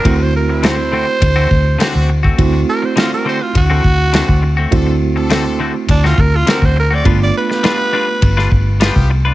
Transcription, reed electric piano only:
X:1
M:4/4
L:1/8
Q:1/4=103
K:Ddor
V:1 name="Reed electric piano"
[A,CE^F]8 | [A,CE^F]8 | [A,CE^F]8 | [A,B,DF]8 |]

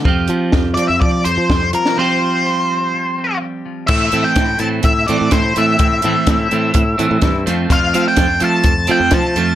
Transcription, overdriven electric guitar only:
X:1
M:4/4
L:1/8
Q:1/4=126
K:Am
V:1 name="Overdriven electric guitar"
[F,CFG]8 | [F,CFG]8 | z [E,A,C] z [E,A,C] z [E,A,C] z [E,A,C] | z [E,A,C] z [E,A,C] z [E,A,C] z [F,A,C] |
z [F,A,C] z [F,A,C] z [F,A,C] z [F,A,C] |]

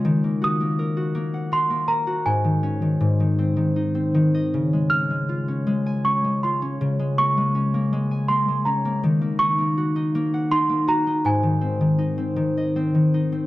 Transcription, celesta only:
X:1
M:3/4
L:1/8
Q:1/4=80
K:Abmix
V:1 name="Celesta"
z e'3 c' b | a4 z2 | z f'3 d' c' | z d'3 c' b |
z d'2 z c' b | a4- a z |]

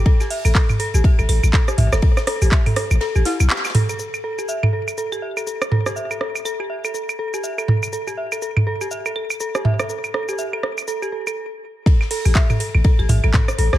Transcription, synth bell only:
X:1
M:4/4
L:1/16
Q:"Swing 16ths" 1/4=122
K:Clyd
V:1 name="Synth bell"
A G e A A z A G e A A z A G e A | A z A G e A A z A G E z G z A A | A z A G e A A z A G e A A z A G | e A A z A G e A A z A G e A A z |
A G e A A z A G e A A z A G e A | A z A G e A A z A G A A z4 | A z A G e A A z A G e A A z A G |]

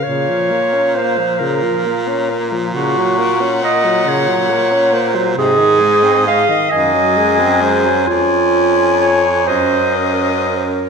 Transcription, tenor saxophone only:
X:1
M:6/8
L:1/16
Q:3/8=45
K:Bbm
V:1 name="Tenor saxophone" clef=bass
D, F, B, D B, F, D, F, B, D B, F, | [K:Abmix] D, G, B, D B, G, D, G, B, D B, G, | C, E, A, C A, E, E, G, A, C A, G, | D6 D6 |]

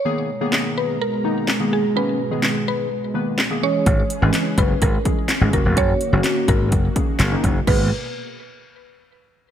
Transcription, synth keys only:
X:1
M:4/4
L:1/16
Q:1/4=126
K:G#m
V:1 name="Synth keys"
[D,A,B,G]2 z [D,A,B,G]4- [D,A,B,G] z2 [D,A,B,D]2 z [D,A,B,G]2 z | [D,A,B,C]2 z [D,G,B,G]4- [D,G,B,G] z2 [D,A,B,B]2 z [D,A,B,G] [E,G,CG]2- | [E,G,CG]2 z [E,G,CB]4- [E,G,CB] z2 [E,G,CG]2 z [E,G,CG] [D,A,CF]2- | [D,A,CF]2 z [D,A,CF]4- [D,A,CF] z2 [D,A,CG]2 z [D,A,CD]2 z |
[D,A,B,G]2 z12 z2 |]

